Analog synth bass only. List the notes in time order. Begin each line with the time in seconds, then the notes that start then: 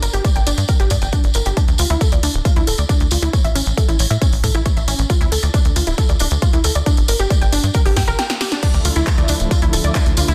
0.03 G1
0.13 G1
0.36 G1
0.47 G1
0.58 G2
0.80 G1
0.91 G2
1.02 G1
1.24 G1
1.35 G1
1.46 G1
1.68 D2
1.79 D2
1.90 D2
2.12 D2
2.23 D2
2.34 D1
2.56 D2
2.67 D1
2.78 D2
3.00 D2
3.11 D2
3.22 D2
3.44 A1
3.55 A1
3.66 A1
3.88 A1
4.00 A1
4.11 A2
4.33 A1
4.44 A2
4.55 A1
4.77 A1
4.88 A1
4.99 A1
5.21 D2
5.32 D2
5.43 D2
5.65 D2
5.76 D2
5.87 D1
6.09 D2
6.20 D1
6.31 D2
6.53 D2
6.64 D2
6.75 D2
6.97 G1
7.08 G1
7.19 G1
7.41 G1
7.53 G1
7.63 G2
7.86 G1
7.97 G2
8.08 G1
8.74 D2
8.85 D2
8.96 D2
9.18 D2
9.29 D2
9.40 D1
9.62 D2
9.73 D1
9.84 D2
10.06 D2
10.17 D2
10.28 D2